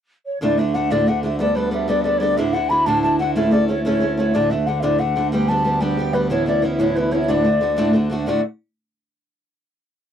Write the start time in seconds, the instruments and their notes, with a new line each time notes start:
0.26 flute C#5
0.41 steel-string acoustic guitar D2 A2 D3 A3 D4 F#4, harmonium D2, flute D5
0.58 steel-string acoustic guitar D3 A3 D4 F#4, flute E5
0.74 steel-string acoustic guitar D3 A3 D4 F#4, flute F#5
0.90 steel-string acoustic guitar D2 A2 D3 A3 D4 F#4, flute D5
1.07 steel-string acoustic guitar D3 A3 D4 F#4, flute F#5
1.23 steel-string acoustic guitar D3 A3 D4 F#4, flute E5
1.39 steel-string acoustic guitar G3 B3 D4 A4, flute D5
1.55 steel-string acoustic guitar G3 B3 D4 A4, flute B4
1.71 steel-string acoustic guitar G3 B3 D4 A4, flute E5
1.88 steel-string acoustic guitar G3 B3 D4 A4, flute D5
2.01 steel-string acoustic guitar G3, flute D5 E5
2.05 steel-string acoustic guitar B3 D4 A4
2.17 steel-string acoustic guitar G3, flute C#5 D5
2.21 steel-string acoustic guitar B3 D4 A4
2.37 steel-string acoustic guitar D2 A2 D3 D4 E4 F#4, flute E5
2.53 steel-string acoustic guitar D3 D4 E4 F#4, flute F#5
2.69 steel-string acoustic guitar D3 D4 E4 F#4, flute B5
2.85 steel-string acoustic guitar D2 A2 D3 D4 E4 F#4, flute A5
3.02 steel-string acoustic guitar D3 D4 E4, flute A5
3.06 steel-string acoustic guitar F#4
3.19 steel-string acoustic guitar D3 D4 E4 F#4, flute F#5
3.35 steel-string acoustic guitar A2 A3 C#4 E4 A4, flute E5
3.51 steel-string acoustic guitar A3 C#4 E4 A4, flute D5
3.68 steel-string acoustic guitar A3 C#4 E4 A4, flute C#5
3.85 steel-string acoustic guitar A2 A3 C#4 E4 A4, flute C#5
4.00 steel-string acoustic guitar A3 C#4 E4 A4
4.17 steel-string acoustic guitar A3 C#4 E4 A4, flute C#5
4.34 steel-string acoustic guitar D2 A2 D3 A3 D4 F#4, harmonium D2, flute D5
4.50 steel-string acoustic guitar D3 A3 D4 F#4, flute E5
4.66 steel-string acoustic guitar D3 A3 D4 F#4, flute F#5
4.80 steel-string acoustic guitar D2 A2 D3 D4, flute D5 E5
4.84 steel-string acoustic guitar A3 F#4
4.98 steel-string acoustic guitar D3 A3 F#4, flute F#5
5.16 steel-string acoustic guitar D3 A3 D4 F#4
5.31 steel-string acoustic guitar G3 B3 D4 G4, flute G5
5.48 steel-string acoustic guitar G3 B3 D4 G4, flute A5
5.65 steel-string acoustic guitar G3 B3 D4 G4
5.81 steel-string acoustic guitar G3 B3 D4 G4, flute G5
5.97 steel-string acoustic guitar G3 B3 D4 G4
6.13 steel-string acoustic guitar G3 B3 D4 G4, flute B4
6.30 steel-string acoustic guitar A2 E3 B3 C#4 E4, flute C#5
6.46 steel-string acoustic guitar E3 B3 C#4 E4, flute D5
6.62 steel-string acoustic guitar E3 B3 C#4 E4
6.79 steel-string acoustic guitar A2 E3 B3 C#4 E4, flute C#5
6.95 steel-string acoustic guitar E3 B3 C#4 E4, flute B4
7.11 steel-string acoustic guitar E3 B3 C#4 E4, flute C#5
7.28 steel-string acoustic guitar D2 A2 D3 A3 D4 F#4, flute D5
7.44 steel-string acoustic guitar D3 A3 D4 F#4
7.61 steel-string acoustic guitar D3 A3 D4 F#4
7.77 steel-string acoustic guitar D2 A2 D3 A3 D4 F#4
7.93 steel-string acoustic guitar D3 A3 D4 F#4
8.10 steel-string acoustic guitar D3 A3 D4 F#4
8.26 steel-string acoustic guitar D2 A2 D3 A3 D4 F#4, flute D5